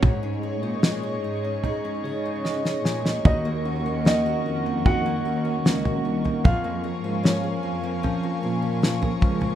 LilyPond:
<<
  \new Staff \with { instrumentName = "Analog synth pad" } { \time 4/4 \key bes \minor \tempo 4 = 75 << { des'''1~ | des'''1 | des'''1 | } \\ { <aes' des'' ees''>1 | <bes' ges''>1 | <bes' f'' aes''>1 | } >> }
  \new Staff \with { instrumentName = "Grand piano" } { \time 4/4 \key bes \minor r1 | <ees' ees''>4 <ees' ees''>4 <ges' ges''>2 | <f' f''>4 <des' des''>2~ <des' des''>8 r8 | }
  \new Staff \with { instrumentName = "Steel-string acoustic guitar" } { \time 4/4 \key bes \minor <aes, aes'>16 des'16 aes'16 ees'16 aes16 aes'16 ees'16 des'16 <aes, aes'>16 des'16 aes'16 ees'16 aes16 aes'16 ees'16 des'16 | <ees ges'>16 bes16 ges'16 des'16 bes16 ges'16 des'16 bes16 <ees ges'>16 bes16 ges'16 des'16 bes16 ges'16 des'16 bes16 | <f aes'>16 bes16 aes'16 des'16 bes16 aes'16 des'16 bes16 <f aes'>16 bes16 aes'16 des'16 bes16 aes'16 des'16 bes16 | }
  \new Staff \with { instrumentName = "Tine electric piano" } { \time 4/4 \key bes \minor r2 r8 des''8 ees''8 aes''8 | r1 | r1 | }
  \new Staff \with { instrumentName = "Tine electric piano" } { \time 4/4 \key bes \minor aes16 ees'16 aes'16 des''16 aes'16 des''16 aes'16 des''16 ees'16 des''16 aes'16 des''16 aes'16 des''16 aes'16 des''16 | ees16 bes16 des'16 ees16 bes16 des'16 ees16 bes16 ees16 bes16 des'16 ees16 bes16 des'16 ees16 bes16 | f16 f16 f16 f16 f16 f16 f16 f16 des'16 f16 f16 f16 f16 f16 f16 f16 | }
  \new Staff \with { instrumentName = "Cello section" } { \clef bass \time 4/4 \key bes \minor aes,8. bes,8. aes,8. r16 des4 bes,8 | ees,4. f,4 ees,8 des,8 c,8 | f,8. aes,8. f,8. r16 bes,4 des,8 | }
  \new DrumStaff \with { instrumentName = "Drums" } \drummode { \time 4/4 <bd tomfh>4 sn4 tomfh4 sn16 sn16 sn16 sn16 | <bd tomfh>4 sn4 <bd tomfh>4 sn16 tomfh8 tomfh16 | <bd tomfh>4 sn4 tomfh4 sn16 tomfh16 bd16 tomfh16 | }
>>